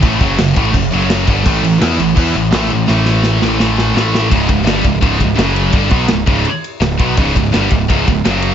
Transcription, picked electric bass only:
\new Staff \with { instrumentName = "Picked electric bass" } { \clef bass \time 4/4 \key cis \minor \tempo 4 = 168 a,,8 fis,,8 fis,,8 a,,8 fis,,8 fis,,4 g,,8 | a,,8 a,,8 e,8 a,,8 e,8 a,,8 a,,8 a,,8 | a,,4. a,,8 a,,4 a,,4 | cis,,8 cis,,8 g,,8 cis,,8 cis,,8 cis,,8 fis,,4 |
g,,8 b,,8 cis,,8 cis,,8 r4 cis,,8 b,,8 | cis,,8 cis,,8 g,,8 cis,,8 cis,,8 cis,,8 fis,,4 | }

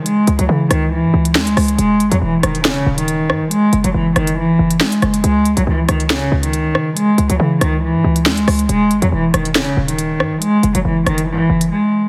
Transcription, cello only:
\new Staff \with { instrumentName = "Cello" } { \clef bass \time 4/4 \key cis \minor \tempo 4 = 139 gis8. fis16 e8 dis8 e4 gis4 | gis8. fis16 e8 dis8 cis8. dis4~ dis16 | gis8. fis16 e8 dis8 e4 gis4 | gis8. fis16 e8 dis8 cis8. dis4~ dis16 |
gis8. fis16 e8 dis8 e4 gis4 | gis8. fis16 e8 dis8 cis8. dis4~ dis16 | gis8. fis16 e8 dis8 e4 gis4 | }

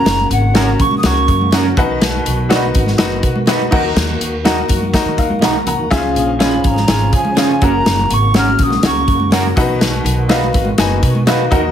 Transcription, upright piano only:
<<
  \new Staff \with { instrumentName = "Upright piano" } { \time 4/4 \key ces \lydian \tempo 4 = 123 << { r1 | r1 | r2 r8 f''8 <ges'' bes''>8 <ges'' bes''>8~ | <ges'' bes''>8 r2. r8 |
r1 | r1 | } \\ { <des' ges' bes' ges''>8 r8 <des' ges' bes' ges''>4 <des' ges' bes' ges''>4 <des' ges' bes' ges''>8 <ees' ges' ces'' ges''>8~ | <ees' ges' ces'' ges''>8 r8 <d' ees' ges' ces'' ges''>4 <ees' ges' ces'' ges''>4 <ees' ges' ces'' ges''>8 <ees' ges' bes' ges''>8~ | <ees' ges' bes' ges''>8 r8 <ees' ges' bes' ges''>4 <ees' ges' bes' ges''>4 r4 | <des' f' aes' fes'' f''>4 <des' f' aes' f''>4 <des' f' aes' f''>4 <des' f' aes' f''>8 <des' ges' bes' ges''>8~ |
<des' ges' bes' ges''>8 r8 <des' ges' bes' ges''>4 <des' ges' aes' bes' ges''>4 <des' ges' bes' ges''>8 <ees' ges' ces'' ges''>8~ | <ees' ges' ces'' ges''>8 r8 <ees' ges' ces'' f''>4 <ees' ges' ces'' aes''>4 <ees' ges' ces'' f''>8 <ees' ges' bes' ges''>8 | } >> }
  \new Staff \with { instrumentName = "Upright piano" } { \clef bass \time 4/4 \key ces \lydian r2. r8 ces8~ | ces4 r2 r8 ees8~ | ees4 r2. | des4. r2 r8 |
r2. r8 ces8~ | ces4 r2 r8 ees8 | }
>>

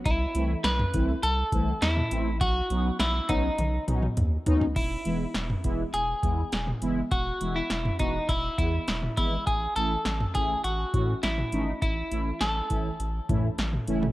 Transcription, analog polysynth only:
\new Staff \with { instrumentName = "Analog polysynth" } { \time 4/4 \key e \major \tempo 4 = 102 r8 <e a c' e'>8 r8 <e a c' e'>8 r8 <e a c' e'>8 r8 <e a c' e'>8 | r8 <fis b cis' dis'>8 r8 <fis b cis' dis'>8 r8 <fis b cis' dis'>8 r8 <fis b cis' dis'>8 | r8 <e gis b e'>8 r8 <e gis b e'>8 r8 <e gis b e'>8 r8 <e gis b e'>8 | r8 <e gis b e'>8 r8 <e gis b fis'>8 r8 <e gis b e'>8 r8 <e gis b e'>8 |
r8 <e a cis' e'>8 r8 <e a cis' e'>8 r8 <e a cis' fis'>8 r8 <e a cis' dis'>8 | r8 <e a cis' e'>8 r8 <e a cis' e'>8 r8 <e a cis' e'>8 r8 <e a cis' e'>8 | }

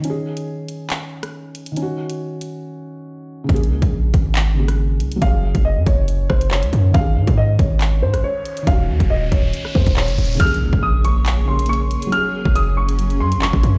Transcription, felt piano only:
\new Staff \with { instrumentName = "Felt piano" } { \time 4/4 \key bes \minor \tempo 4 = 139 <ees des' aes'>1 | <ees des' ges'>1 | <des bes aes'>2~ <des bes aes'>8 <des bes aes'>4. | <ges des' aes'>1 |
<ees des' aes'>1 | <ees des' ges'>1 | <des bes aes'>2~ <des bes aes'>8 <des bes aes'>4. | <ges des' aes'>1 | }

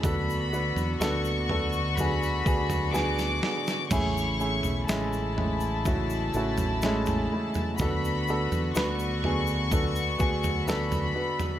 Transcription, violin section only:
\new Staff \with { instrumentName = "Violin section" } { \time 4/4 \key d \lydian \tempo 4 = 62 b''4 cis'''4 b''4 d'''4 | cis'''4 a''2. | b''4 cis'''2 b''4 | }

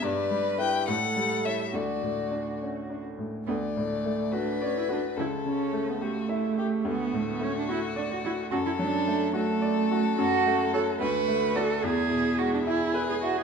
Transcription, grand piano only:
\new Staff \with { instrumentName = "Grand piano" } { \time 6/8 \key d \major \tempo 4. = 72 g,8 g8 <e' b'>8 a,8 g8 <e' cis''>8 | d,8 a,8 d'8 cis'8 d'8 a,8 | d,8 a,8 a8 fis'8 d''8 fis'8 | cis,8 cis8 a8 g'8 e''8 g'8 |
d,8 a,8 a8 fis'8 d''8 fis'8 | fis,8 fis8 a8 fis'8 d''8 fis'8 | \key e \mixolydian fis,8 a8 <fis' cis''>8 d,8 a8 <fis' d''>8 | e,8 b,8 gis8 e'8 b'8 e'8 | }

